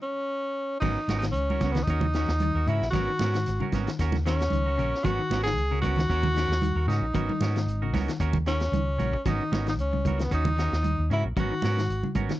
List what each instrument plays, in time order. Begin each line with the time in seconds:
0.02 tenor saxophone C#4
0.80 fingered electric bass G#1, clean electric guitar F#3 B3 C#4 F#4 A#4, tenor saxophone D#4, kick, crash, low conga
0.97 muted clean electric guitar stroke
1.08 fingered electric bass G#1, clean electric guitar B3 C#4 F#4 A#4, snare, closed hi-hat, high conga
1.19 tenor saxophone D#4, closed hi-hat
1.23 clean electric guitar D#3, snare
1.31 fingered electric bass C#2, tenor saxophone C#4, closed hi-hat
1.50 clean electric guitar C#4 F#4 A#4, muted clean electric guitar stroke, high conga
1.60 fingered electric bass C#2, clean electric guitar B3 C#4 F#4, kick, snare, closed hi-hat, high conga
1.65 clean electric guitar A#4
1.72 tenor saxophone B3, snare, closed hi-hat, low conga
1.76 clean electric guitar D#3
1.83 tenor saxophone D#4
1.87 fingered electric bass D#2, clean electric guitar C#4 F#4 A#4, kick, closed hi-hat
2.01 clean electric guitar C#3, high conga, low conga
2.13 clean electric guitar D#3 C#4 F#4 A#4, snare, closed hi-hat
2.28 fingered electric bass D#2, snare
2.40 clean electric guitar D#3, closed hi-hat, high conga
2.55 fingered electric bass D#2, clean electric guitar F#4 A#4
2.67 fingered electric bass G#2, clean electric guitar C#3 C#4 F#4 A#4, tenor saxophone E4, closed hi-hat
2.81 fingered electric bass A#1, snare
2.90 fingered electric bass G#1, clean electric guitar F#3 B3, tenor saxophone F#4, kick, snare, closed hi-hat, low conga
2.95 clean electric guitar C#4 F#4 A#4
3.08 clean electric guitar D#3
3.19 fingered electric bass G#2, clean electric guitar B3 C#4 F#4 A#4, snare, closed hi-hat, high conga
3.34 clean electric guitar D#3, snare, closed hi-hat
3.46 fingered electric bass G#1, snare, closed hi-hat
3.60 clean electric guitar C#3 C#4 F#4 A#4, high conga
3.72 fingered electric bass G#1, clean electric guitar B3 C#4 F#4 A#4, kick, snare, closed hi-hat, high conga
3.87 clean electric guitar D#3, snare, closed hi-hat
3.99 fingered electric bass D#2, clean electric guitar C#4 F#4 A#4, kick, snare, closed hi-hat
4.12 clean electric guitar C#3, snare, high conga, low conga
4.26 clean electric guitar D#3 C#4 F#4 A#4, tenor saxophone C#4, snare, closed hi-hat
4.40 snare, closed hi-hat
4.50 fingered electric bass C#2, clean electric guitar D#3, closed hi-hat, high conga
4.66 clean electric guitar F#4 A#4
4.78 fingered electric bass A#1, clean electric guitar C#3 C#4 F#4 A#4, closed hi-hat
4.94 snare
5.04 fingered electric bass G#1, clean electric guitar F#3 B3 C#4 F#4 A#4, tenor saxophone F#4, kick, closed hi-hat, low conga
5.18 clean electric guitar D#3
5.30 fingered electric bass G#1, clean electric guitar B3 C#4 F#4 A#4, snare, closed hi-hat, high conga
5.44 clean electric guitar D#3, tenor saxophone G#4, snare, closed hi-hat
5.57 fingered electric bass C#2, closed hi-hat
5.71 clean electric guitar C#3 C#4 F#4 A#4
5.82 fingered electric bass C#2, clean electric guitar B3 C#4 F#4 A#4, tenor saxophone F#4, kick, closed hi-hat, high conga
5.96 clean electric guitar D#3, snare, closed hi-hat, low conga
6.10 fingered electric bass D#2, clean electric guitar C#4 F#4 A#4, kick, closed hi-hat
6.23 clean electric guitar C#3, high conga, low conga
6.34 clean electric guitar D#3 C#4 A#4, snare, closed hi-hat
6.48 fingered electric bass D#2, snare
6.62 clean electric guitar D#3, closed hi-hat, high conga
6.75 fingered electric bass D#2, clean electric guitar F#4 A#4
6.87 fingered electric bass G#2, clean electric guitar C#3 C#4 F#4 A#4, tenor saxophone D#4, snare, closed hi-hat
7.01 fingered electric bass A#1
7.14 fingered electric bass G#1, clean electric guitar F#3 B3 C#4 F#4 A#4, kick, closed hi-hat, low conga
7.29 clean electric guitar D#3, high conga
7.40 fingered electric bass G#2, clean electric guitar B3 C#4 F#4 A#4, snare, closed hi-hat, high conga
7.56 clean electric guitar D#3, snare, closed hi-hat
7.66 fingered electric bass G#1, closed hi-hat
7.82 clean electric guitar C#3 F#4 A#4, muted clean electric guitar stroke
7.93 fingered electric bass C#2, clean electric guitar B3 C#4 F#4 A#4, kick, snare, open hi-hat, high conga
8.08 clean electric guitar D#3, snare, closed hi-hat
8.20 fingered electric bass D#2, clean electric guitar C#4 F#4 A#4, kick, closed hi-hat
8.33 clean electric guitar C#3, kick, high conga, low conga
8.46 clean electric guitar D#3 C#4 F#4 A#4, tenor saxophone C#4, snare, closed hi-hat
8.60 snare, closed hi-hat
8.72 fingered electric bass C#2, clean electric guitar D#3, closed hi-hat, high conga
8.99 fingered electric bass A#1, clean electric guitar C#3 C#4 F#4 A#4, closed hi-hat, high conga
9.13 kick
9.26 fingered electric bass G#1, clean electric guitar F#3 B3 C#4 F#4 A#4, tenor saxophone D#4, kick, snare, closed hi-hat, low conga
9.40 clean electric guitar D#3
9.52 fingered electric bass G#1, clean electric guitar B3 C#4 F#4 A#4, snare, closed hi-hat, high conga
9.67 clean electric guitar D#3, tenor saxophone D#4, snare, closed hi-hat
9.78 fingered electric bass C#2, tenor saxophone C#4, closed hi-hat
9.93 clean electric guitar C#3, high conga
10.05 fingered electric bass C#2, clean electric guitar B3 F#4 A#4, kick, closed hi-hat, high conga
10.18 clean electric guitar D#3, tenor saxophone B3, snare, closed hi-hat
10.31 fingered electric bass D#2, clean electric guitar C#4 F#4, tenor saxophone D#4, muted clean electric guitar stroke, kick, closed hi-hat
10.44 clean electric guitar C#3, high conga, low conga
10.57 clean electric guitar D#3 C#4 F#4 A#4, snare, closed hi-hat
10.72 fingered electric bass D#2, snare
10.83 clean electric guitar D#3, closed hi-hat, high conga
10.98 fingered electric bass D#2
11.10 fingered electric bass G#2, clean electric guitar C#3 C#4 F#4 A#4, tenor saxophone E4, closed hi-hat
11.24 fingered electric bass A#1
11.36 fingered electric bass G#1, clean electric guitar F#3 B3 C#4 F#4 A#4, tenor saxophone F#4, kick, closed hi-hat, low conga
11.51 clean electric guitar D#3
11.62 fingered electric bass G#2, clean electric guitar B3 C#4 F#4 A#4, snare, closed hi-hat, high conga
11.77 clean electric guitar D#3, snare, closed hi-hat
11.89 fingered electric bass G#1, closed hi-hat
12.03 clean electric guitar C#3, high conga
12.15 fingered electric bass G#1, clean electric guitar B3 C#4 F#4 A#4, kick, closed hi-hat, high conga
12.29 clean electric guitar D#3, snare, closed hi-hat, low conga